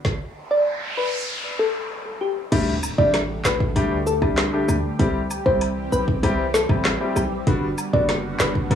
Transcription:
0.05 kick, snare, noise sweep
0.51 D5
0.97 B4
1.59 A4
2.21 G4
2.52 D2 D3 G3 A3 D4 G4, kick, closed hi-hat, crash, impact
2.83 cabasa, high woodblock
2.98 A1 G3 A3 D4 G4 D5, kick
3.14 snare, closed hi-hat, high woodblock
3.45 A1 B4, snare, clap, cabasa
3.60 kick
3.76 D2 G3 A3 D4 G4, kick, closed hi-hat, high woodblock
4.07 A4, cabasa
4.22 C2 G3 A3 D4 G4, kick, high woodblock
4.37 snare, clap, closed hi-hat
4.53 G3 A3 D4 G4
4.69 D2, cabasa, high woodblock
4.99 C2 E3 G3 C4 E4 G4, kick, closed hi-hat
5.31 cabasa, high woodblock
5.46 C2 G3 C4 E4 G4 C5, kick
5.61 closed hi-hat, high woodblock
5.92 B1 B4, cabasa
6.08 kick
6.23 C2 G3 C4 E4 G4, kick, closed hi-hat, high woodblock
6.54 A4, snare, cabasa
6.69 A1 G3 C4 E4 G4, kick, high woodblock
6.85 snare, clap, closed hi-hat
7.00 G3 C4 E4 G4
7.16 B1 G4, cabasa, high woodblock
7.47 G1 D3 G3 B3 D4 F#4, kick, closed hi-hat
7.78 cabasa, high woodblock
7.93 F#1 G3 B3 D4 F#4 D5, kick
8.09 snare, closed hi-hat, high woodblock
8.40 F#1 B4, snare, clap, cabasa
8.55 kick
8.70 G1 G3 B3 D4 F#4, kick, closed hi-hat, high woodblock

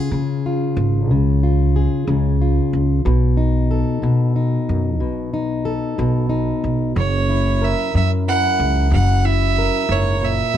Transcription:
Already playing: C#3 F4 G#4
0.11 C#3
0.46 F4
0.77 G#1
1.10 C#2 C#3
1.43 F4
1.76 G#4
2.07 C#2 C#3
2.41 F4
2.73 C#2
3.05 B1 B2
3.37 D#4
3.71 A4
4.02 B2
4.36 D#4
4.69 F#2
5.00 B1 B2
5.34 D#4
5.65 A4
5.98 B1 B2
6.29 D#4
6.64 B1
6.95 F#1 F#2 C#5
7.29 E4
7.62 A#4 E5
7.94 F#2 E5
8.28 E4 F#5
8.60 C#2
8.91 F#1 F#2 F#5
9.25 E4 E5
9.58 A#4
9.89 F#1 G#2 C#5
10.22 A#2 E5
10.54 B2

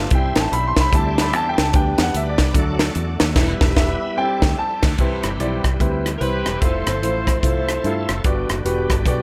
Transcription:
Already playing: F3 G3 A3 B3 F4 G4 A4 A5
0.11 C2 G3 C4 E4 C5 E5, kick, closed hi-hat
0.15 G5
0.36 A1, snare, closed hi-hat
0.41 A5
0.52 B1 B5, closed hi-hat
0.68 C6
0.76 C2 B5, kick, snare, closed hi-hat
0.91 D2 G3 C4 D4 E4 A4 D5, kick, closed hi-hat
0.95 A5
1.18 B5, snare, closed hi-hat
1.33 E2 A5, closed hi-hat
1.49 G5
1.58 C#2, snare, closed hi-hat
1.63 A5
1.73 D2 G3 B3 D4 G4 B4 G5, kick, closed hi-hat
1.98 E2, snare, closed hi-hat
2.02 F#5
2.14 D2 E5, closed hi-hat
2.30 D5
2.38 C2, kick, snare, closed hi-hat
2.54 D2 F#3 A3 D4 F#4 A4, kick, closed hi-hat
2.79 snare, closed hi-hat
2.95 E2, closed hi-hat
3.20 D#2, snare, closed hi-hat
3.35 E1 G3 B3 E4 G4 B4 E5, kick, snare, crash
3.61 E1, kick, snare
3.77 E1 E5, kick, snare
4.17 G3 C4 D4 E4 A4 D5 G5
4.42 D2, kick, snare
4.59 A5
4.83 D2, kick, snare, crash
4.97 C2 C3 E3 G3 B3 C4 E4 G4 B4, kick, closed hi-hat
5.23 G1, cross-stick, closed hi-hat
5.39 B1 G3 C4 E4 D5, closed hi-hat
5.64 C2, kick, cross-stick, closed hi-hat
5.80 D2 G3 C4 E4 B4, kick, closed hi-hat
6.06 cross-stick, closed hi-hat
6.17 C2 G3 C4 E4 A#4 B4, closed hi-hat
6.22 E4 G4 B4 C5
6.45 E1 B4, cross-stick, closed hi-hat
6.60 F1 F3 A3 C4 E4 F4 A4 C5, kick, closed hi-hat
6.87 G1, cross-stick, closed hi-hat
7.02 A1 A3 E4 F4 C5, closed hi-hat
7.27 kick, cross-stick, closed hi-hat
7.41 C2 A3 E4 F4 A4 C5, kick, closed hi-hat
7.69 cross-stick, closed hi-hat
7.84 G2 A3 E4 F4 A4, closed hi-hat
8.09 F#1, cross-stick, closed hi-hat
8.23 G1 G2 D3 G3 B3 D4 F#4 G4 D5, kick, closed hi-hat
8.49 F#1, cross-stick, closed hi-hat
8.65 E1 B3 F#4 G4 B4, closed hi-hat
8.90 G1, kick, cross-stick, closed hi-hat
9.06 B1 B3 F#4 G4 D5, kick, closed hi-hat

